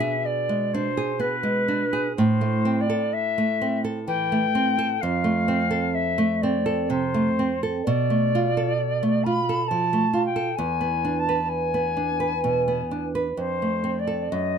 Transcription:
Already playing: nylon-string guitar B2 D4, flute E5
0.00 nylon-string guitar G#4
0.25 flute D5
0.49 nylon-string guitar G#3
0.73 nylon-string guitar D4, flute C5
0.97 nylon-string guitar G#4
1.20 nylon-string guitar B3, flute B4
1.43 nylon-string guitar G#3
1.68 nylon-string guitar D4
1.93 nylon-string guitar G#4
2.16 nylon-string guitar A2, flute C5
2.41 nylon-string guitar A3
2.65 nylon-string guitar C4
2.80 flute D5
2.90 nylon-string guitar A4
3.13 flute E5
3.38 nylon-string guitar A3
3.62 nylon-string guitar C4
3.85 nylon-string guitar A4
4.07 nylon-string guitar E3, flute G5
4.32 nylon-string guitar A3
4.55 nylon-string guitar C4
4.79 nylon-string guitar A4
5.01 nylon-string guitar F2, flute F5
5.24 nylon-string guitar A3
5.48 nylon-string guitar C4
5.71 nylon-string guitar A4
5.94 flute E5
6.18 nylon-string guitar A3
6.41 nylon-string guitar C4, flute D5
6.66 nylon-string guitar A4
6.89 nylon-string guitar C3, flute C5
7.14 nylon-string guitar A3
7.39 nylon-string guitar C4
7.63 nylon-string guitar A4
7.84 nylon-string guitar B2, flute D5
8.10 nylon-string guitar A3
8.35 nylon-string guitar F4
8.57 nylon-string guitar A4
9.03 nylon-string guitar A3
9.23 nylon-string guitar F4, flute B5
9.49 nylon-string guitar A4
9.67 nylon-string guitar F3, flute A5
9.93 nylon-string guitar A3
10.13 nylon-string guitar F4
10.25 flute G5
10.36 nylon-string guitar A4
10.55 nylon-string guitar E2, flute G#5
10.81 nylon-string guitar B3
11.05 nylon-string guitar D4
11.19 flute A5
11.29 nylon-string guitar B4
11.48 flute G#5
11.74 nylon-string guitar B3
11.97 nylon-string guitar D4
12.20 nylon-string guitar B4
12.44 nylon-string guitar B2
12.68 nylon-string guitar B3
12.91 nylon-string guitar D4
13.15 nylon-string guitar B4
13.37 nylon-string guitar F2, flute C5
13.62 nylon-string guitar A3
13.84 nylon-string guitar C4
13.99 flute D5
14.07 nylon-string guitar A4
14.31 nylon-string guitar F#2, flute D#5

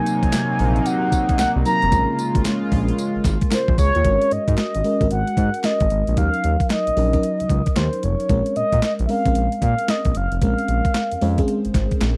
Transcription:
Already playing: analog synth pad C3 F#3 A#3 D#4, fm electric piano F#3 C4 D#4 A#4, soft synth lead G#5
0.06 closed hi-hat, tambourine
0.23 analog synth bass A#1, kick, closed hi-hat
0.32 snare, clap, closed hi-hat, tambourine
0.59 analog synth bass A#1, open hi-hat
0.76 closed hi-hat
0.86 soft synth lead F#5, closed hi-hat, tambourine
1.12 kick, closed hi-hat, tambourine
1.29 kick, closed hi-hat
1.39 analog synth bass C2, soft synth lead F#5, snare, clap, closed hi-hat, tambourine
1.56 analog synth bass C2
1.65 fm electric piano F#3 C4 D#4 A#4, soft synth lead A#5, open hi-hat, tambourine
1.82 analog synth bass F1, closed hi-hat
1.92 analog synth bass A#1, analog synth pad C#3 G#3 F4, fm electric piano G#3 C#4 F4 A#4, kick, closed hi-hat, tambourine
2.19 closed hi-hat, tambourine
2.35 analog synth bass G#1, kick, closed hi-hat
2.45 snare, clap, closed hi-hat, tambourine
2.72 analog synth bass A#1, kick, open hi-hat
2.88 closed hi-hat
2.98 closed hi-hat, tambourine
3.16 analog synth bass G#1
3.25 analog synth bass G#1, kick, snare, clap, closed hi-hat, tambourine
3.41 kick, closed hi-hat
3.51 fm electric piano F4 A#4, soft synth lead C5, snare, clap, closed hi-hat, tambourine
3.68 analog synth bass A#1, kick
3.78 analog synth bass C#2, fm electric piano G#4 C#5, soft synth lead C#5, kick, open hi-hat, tambourine
3.95 analog synth bass D#2, fm electric piano F4 A#4, closed hi-hat
4.04 analog synth bass G#1, fm electric piano G#3 C4 F#4 A#4, kick, closed hi-hat
4.11 fm electric piano C#4
4.22 closed hi-hat
4.31 analog synth bass G#2, soft synth lead D#5, closed hi-hat
4.48 analog synth bass G#2, kick, closed hi-hat
4.58 soft synth lead D#5, snare, clap, closed hi-hat
4.75 analog synth bass G#1, closed hi-hat
4.84 fm electric piano G#3 C#4 F#4 A#4, open hi-hat
5.00 analog synth bass G#1, fm electric piano G#3 C#4 F#4 A#4, kick, closed hi-hat
5.11 analog synth bass G#1, soft synth lead F#5, closed hi-hat
5.27 closed hi-hat
5.37 analog synth bass G#2, kick, closed hi-hat
5.54 closed hi-hat
5.64 soft synth lead D#5, snare, clap, closed hi-hat
5.80 analog synth bass G#1, kick, closed hi-hat
5.90 analog synth bass G#1, closed hi-hat
6.07 analog synth bass A#1, closed hi-hat
6.16 analog synth bass D#2, fm electric piano F#3 C#4 D#4 A#4, soft synth lead F5, kick, closed hi-hat
6.34 closed hi-hat
6.44 analog synth bass D#2, closed hi-hat
6.60 kick, closed hi-hat
6.70 soft synth lead D#5, snare, clap, closed hi-hat
6.87 analog synth bass A#1, closed hi-hat
6.96 analog synth bass A#1, fm electric piano F#3 C#4 D#4 A#4, open hi-hat
7.13 fm electric piano F#3 C#4 D#4 A#4, kick, closed hi-hat
7.23 closed hi-hat
7.40 analog synth bass C#2, closed hi-hat
7.50 analog synth bass C#2, kick, closed hi-hat
7.66 kick, closed hi-hat
7.76 analog synth bass D#2, soft synth lead C5, snare, clap, closed hi-hat
7.93 closed hi-hat
8.03 analog synth bass F1, soft synth lead C#5, closed hi-hat
8.20 closed hi-hat
8.29 analog synth bass A#1, fm electric piano G#3 C4 C#4 A#4, kick, closed hi-hat
8.46 closed hi-hat
8.56 analog synth bass A#2, soft synth lead D#5, closed hi-hat
8.72 analog synth bass A#2, kick, closed hi-hat
8.82 soft synth lead D#5, snare, clap, closed hi-hat
8.99 analog synth bass A#1, closed hi-hat
9.06 fm electric piano G#3 C4 C#4, soft synth lead E5, open hi-hat
9.10 fm electric piano A#4, soft synth lead F5
9.26 analog synth bass A#1, fm electric piano G#3 C4 C#4 A#4, kick, closed hi-hat
9.35 analog synth bass A#1, closed hi-hat
9.52 closed hi-hat
9.62 analog synth bass A#2, soft synth lead F5, kick, closed hi-hat
9.79 closed hi-hat
9.88 soft synth lead D#5, snare, clap, closed hi-hat
10.05 analog synth bass A#1, kick, closed hi-hat
10.15 analog synth bass F#1, soft synth lead F5, closed hi-hat
10.32 analog synth bass F1, closed hi-hat
10.42 analog synth bass A#1, fm electric piano G#3 C4 C#4 A#4, soft synth lead F5, kick, closed hi-hat
10.58 closed hi-hat
10.68 analog synth bass A#1, closed hi-hat
10.85 kick, closed hi-hat
10.94 snare, clap, closed hi-hat
11.12 analog synth bass F2, closed hi-hat
11.21 analog synth bass F2, fm electric piano G#3 C4 C#4 C5, open hi-hat
11.38 fm electric piano G#3 C4 C#4 G#4, kick, closed hi-hat
11.48 closed hi-hat
11.65 analog synth bass G#1, closed hi-hat
11.74 analog synth bass G#1, kick, snare, clap, closed hi-hat
11.91 kick, closed hi-hat
12.01 analog synth bass A#1, snare, clap, closed hi-hat

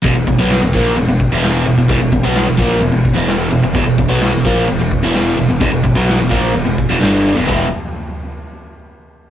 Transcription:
0.02 fingered electric bass E1, overdriven electric guitar E2 B2, kick, crash
0.15 fingered electric bass E1, overdriven electric guitar E2 B2
0.27 fingered electric bass E1, overdriven electric guitar E2 B2, kick
0.39 fingered electric bass B1, overdriven electric guitar B2 F#3 B3
0.50 snare, crash
0.62 fingered electric bass E1, overdriven electric guitar E2 B2
0.73 fingered electric bass A#1, overdriven electric guitar A#2 F3 A#3, kick
0.96 fingered electric bass E1, overdriven electric guitar E2 B2, crash
1.08 fingered electric bass E1, overdriven electric guitar E2 B2
1.20 kick
1.32 fingered electric bass E1, overdriven electric guitar E2 B2 E3
1.43 snare, crash
1.66 fingered electric bass E1, overdriven electric guitar E2 B2
1.77 fingered electric bass E1, overdriven electric guitar E2 B2
1.89 fingered electric bass E1, overdriven electric guitar E2 B2, kick, crash
2.00 fingered electric bass E1, overdriven electric guitar E2 B2
2.12 fingered electric bass E1, overdriven electric guitar E2 B2, kick
2.23 fingered electric bass B1, overdriven electric guitar B2 F#3 B3
2.35 snare, crash
2.46 fingered electric bass E1, overdriven electric guitar E2 B2
2.57 fingered electric bass A#1, overdriven electric guitar A#2 F3 A#3, kick
2.81 fingered electric bass E1, overdriven electric guitar E2 B2, crash
2.92 fingered electric bass E1, overdriven electric guitar E2 B2
3.05 kick
3.13 fingered electric bass E1, overdriven electric guitar E2 B2 E3
3.27 snare, crash
3.51 fingered electric bass E1, overdriven electric guitar E2 B2
3.63 fingered electric bass E1, overdriven electric guitar E2 B2
3.74 fingered electric bass E1, overdriven electric guitar E2 B2, kick, crash
3.87 fingered electric bass E1, overdriven electric guitar E2 B2
3.98 fingered electric bass E1, overdriven electric guitar E2 B2, kick
4.09 fingered electric bass B1, overdriven electric guitar B2 F#3 B3
4.21 snare, crash
4.33 fingered electric bass E1, overdriven electric guitar E2 B2
4.45 fingered electric bass A#1, overdriven electric guitar A#2 F3 A#3, kick
4.68 fingered electric bass E1, overdriven electric guitar E2 B2, crash
4.79 fingered electric bass E1, overdriven electric guitar E2 B2
4.91 kick
5.03 fingered electric bass E1, overdriven electric guitar E2 B2 E3
5.14 snare, crash
5.37 fingered electric bass E1, overdriven electric guitar E2 B2
5.49 fingered electric bass E1, overdriven electric guitar E2 B2
5.61 fingered electric bass E1, overdriven electric guitar E2 B2, kick, crash
5.71 fingered electric bass E1, overdriven electric guitar E2 B2
5.84 fingered electric bass E1, overdriven electric guitar E2 B2, kick
5.96 fingered electric bass B1, overdriven electric guitar B2 F#3 B3
6.09 snare, crash
6.19 fingered electric bass E1, overdriven electric guitar E2 B2
6.29 fingered electric bass A#1, overdriven electric guitar A#2 F3 A#3, kick
6.54 fingered electric bass E1, overdriven electric guitar E2 B2, crash
6.65 fingered electric bass E1, overdriven electric guitar E2 B2
6.78 kick
6.89 fingered electric bass E1, overdriven electric guitar E2 B2
7.00 fingered electric bass G1, overdriven electric guitar G2 D3 G3, snare, crash
7.35 fingered electric bass E1, overdriven electric guitar E2 B2
7.46 fingered electric bass E1, overdriven electric guitar E3 G#3 B3 E4, kick, floor tom

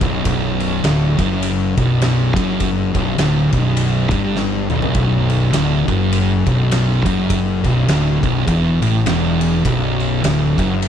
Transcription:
0.01 fingered electric bass B0, distorted electric guitar B1, kick, ride
0.25 fingered electric bass B0, distorted electric guitar B1, kick, ride
0.60 ride
0.84 fingered electric bass D1, distorted electric guitar D2, snare, ride
1.19 fingered electric bass F#1, distorted electric guitar F#2, kick, ride
1.43 ride
1.77 fingered electric bass B0, distorted electric guitar B1, kick, ride
2.01 snare, ride
2.35 fingered electric bass F#1, distorted electric guitar F#2, kick, ride
2.60 kick, ride
2.94 fingered electric bass B0, distorted electric guitar B1, kick, ride
3.18 fingered electric bass D1, distorted electric guitar D2, snare, ride
3.52 fingered electric bass B0, distorted electric guitar B1, kick, ride
3.77 ride
4.11 fingered electric bass G1, distorted electric guitar G2, kick, ride
4.36 snare
4.70 fingered electric bass B0, distorted electric guitar B1, mid tom
4.82 floor tom
4.94 fingered electric bass B0, distorted electric guitar B1, kick, ride
5.30 ride
5.53 fingered electric bass D1, distorted electric guitar D2, snare, ride
5.87 fingered electric bass F#1, distorted electric guitar F#2, kick, ride
6.12 ride
6.46 fingered electric bass B0, distorted electric guitar B1, kick, ride
6.71 snare, ride
7.06 fingered electric bass F#1, distorted electric guitar F#2, kick, ride
7.30 kick, ride
7.64 fingered electric bass B0, distorted electric guitar B1, kick, ride
7.88 fingered electric bass D1, distorted electric guitar D2, snare, ride
8.23 fingered electric bass B0, distorted electric guitar B1, kick, ride
8.47 fingered electric bass E1, distorted electric guitar E2, kick, ride
8.81 fingered electric bass A1, distorted electric guitar A2, ride
9.06 fingered electric bass E1, distorted electric guitar E2, snare, ride
9.41 ride
9.64 fingered electric bass B0, distorted electric guitar B1, kick, ride
10.00 ride
10.24 fingered electric bass D1, distorted electric guitar D2, snare, ride
10.58 fingered electric bass F#1, distorted electric guitar F#2, kick, ride
10.82 ride

